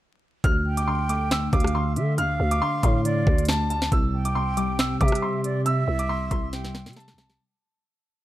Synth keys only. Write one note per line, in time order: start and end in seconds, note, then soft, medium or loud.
0.44 0.64 D3 medium
0.66 0.86 D3 medium
0.87 1.30 D3 medium
1.09 2.18 A3 medium
1.31 1.51 D3 medium
1.53 1.74 D3 medium
1.75 1.95 D3 medium
1.96 2.16 D3 medium
2.18 2.39 D3 loud
2.40 2.60 D3 medium
2.62 3.04 D3 medium
2.84 3.92 A3 medium
3.05 3.26 D3 medium
3.27 3.48 D3 medium
3.49 3.69 D3 medium
3.70 3.92 D3 medium
3.92 4.12 C3 medium
4.13 4.34 C3 medium
4.35 4.78 C3 medium
4.57 5.66 G3 medium
4.79 5.00 C3 medium
5.01 5.21 C3 medium
5.23 5.43 C3 medium
5.44 5.65 C3 medium
5.66 5.87 C3 loud
6.09 6.52 C3 medium
6.32 7.40 G3 medium
6.53 6.73 C3 medium
6.74 6.95 C3 medium
6.96 7.17 C3 medium
7.18 7.40 C3 medium